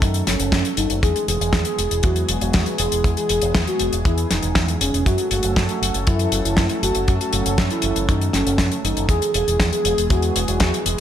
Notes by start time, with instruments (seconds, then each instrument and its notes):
Already playing: analog synth pad F#3 A3 C#4 A4
0.02 fingered electric bass F#2, soft synth lead D#4, kick, closed hi-hat
0.14 closed hi-hat
0.27 fingered electric bass F#1, soft synth lead C#4, snare, closed hi-hat
0.40 fingered electric bass F#1, closed hi-hat
0.52 fingered electric bass F#2, kick, snare, closed hi-hat
0.65 closed hi-hat
0.77 fingered electric bass F#1, soft synth lead D#4, closed hi-hat
0.90 fingered electric bass F#1, closed hi-hat
1.03 fingered electric bass E2, analog synth pad E3 G#3 B3 G#4, soft synth lead G#4, kick, closed hi-hat
1.16 closed hi-hat
1.28 fingered electric bass E1, soft synth lead G#4, closed hi-hat
1.40 fingered electric bass E1, closed hi-hat
1.53 fingered electric bass E2, kick, snare, closed hi-hat
1.65 soft synth lead G#4, closed hi-hat
1.78 fingered electric bass E1, closed hi-hat
1.91 fingered electric bass E1, closed hi-hat
2.03 fingered electric bass E2, soft synth lead F#4, kick, closed hi-hat
2.16 closed hi-hat
2.29 fingered electric bass E1, closed hi-hat
2.41 fingered electric bass E1, soft synth lead F#4, closed hi-hat
2.53 fingered electric bass E2, kick, snare, closed hi-hat
2.66 closed hi-hat
2.78 fingered electric bass E1, soft synth lead G#4, closed hi-hat
2.92 fingered electric bass E1, closed hi-hat
3.04 fingered electric bass E2, kick, closed hi-hat
3.17 soft synth lead G#4, closed hi-hat
3.29 fingered electric bass E1, closed hi-hat
3.42 fingered electric bass E1, closed hi-hat
3.55 fingered electric bass E2, kick, snare, closed hi-hat
3.67 soft synth lead F#4, closed hi-hat
3.79 fingered electric bass E1, closed hi-hat
3.93 fingered electric bass E1, closed hi-hat
4.05 fingered electric bass E2, soft synth lead E4, kick, closed hi-hat
4.18 closed hi-hat
4.30 fingered electric bass E1, soft synth lead D#4, snare, closed hi-hat
4.43 fingered electric bass E1, closed hi-hat
4.55 fingered electric bass E2, kick, snare, closed hi-hat
4.68 closed hi-hat
4.81 fingered electric bass E1, soft synth lead C#4, closed hi-hat
4.93 fingered electric bass E1, closed hi-hat
5.06 fingered electric bass F#2, analog synth pad F#3 A3 C#4 A4, soft synth lead F#4, kick, closed hi-hat
5.18 closed hi-hat
5.31 fingered electric bass F#1, soft synth lead F#4, closed hi-hat
5.43 fingered electric bass F#1, closed hi-hat
5.56 fingered electric bass F#2, kick, snare, closed hi-hat
5.69 soft synth lead F#4, closed hi-hat
5.82 fingered electric bass F#1, closed hi-hat
5.94 fingered electric bass F#1, closed hi-hat
6.07 fingered electric bass F#2, soft synth lead E4, kick, closed hi-hat
6.19 closed hi-hat
6.32 fingered electric bass F#1, closed hi-hat
6.45 fingered electric bass F#1, soft synth lead E4, closed hi-hat
6.57 fingered electric bass F#2, kick, snare, closed hi-hat
6.69 closed hi-hat
6.82 fingered electric bass F#1, soft synth lead F#4, closed hi-hat
6.95 fingered electric bass F#1, closed hi-hat
7.08 fingered electric bass F#2, kick, closed hi-hat
7.20 soft synth lead F#4, closed hi-hat
7.33 fingered electric bass F#1, closed hi-hat
7.46 fingered electric bass F#1, closed hi-hat
7.58 fingered electric bass F#2, kick, snare, closed hi-hat
7.70 soft synth lead E4, closed hi-hat
7.82 fingered electric bass F#1, closed hi-hat
7.96 fingered electric bass F#1, closed hi-hat
8.08 fingered electric bass F#2, soft synth lead D#4, kick, closed hi-hat
8.22 closed hi-hat
8.33 fingered electric bass F#1, soft synth lead C#4, snare, closed hi-hat
8.46 fingered electric bass F#1, closed hi-hat
8.58 fingered electric bass F#2, kick, snare, closed hi-hat
8.72 closed hi-hat
8.84 fingered electric bass F#1, soft synth lead D#4, closed hi-hat
8.97 fingered electric bass F#1, closed hi-hat
9.09 fingered electric bass E2, analog synth pad E3 G#3 B3 G#4, soft synth lead G#4, kick, closed hi-hat
9.22 closed hi-hat
9.34 fingered electric bass E1, soft synth lead G#4, closed hi-hat
9.47 fingered electric bass E1, closed hi-hat
9.60 fingered electric bass E2, kick, snare, closed hi-hat
9.72 soft synth lead G#4, closed hi-hat
9.85 fingered electric bass E1, closed hi-hat
9.98 fingered electric bass E1, closed hi-hat
10.10 fingered electric bass E2, soft synth lead F#4, kick, closed hi-hat
10.22 closed hi-hat
10.35 fingered electric bass E1, closed hi-hat
10.48 fingered electric bass E1, soft synth lead F#4, closed hi-hat
10.60 fingered electric bass E2, kick, snare, closed hi-hat
10.74 closed hi-hat
10.86 fingered electric bass E1, soft synth lead G#4, closed hi-hat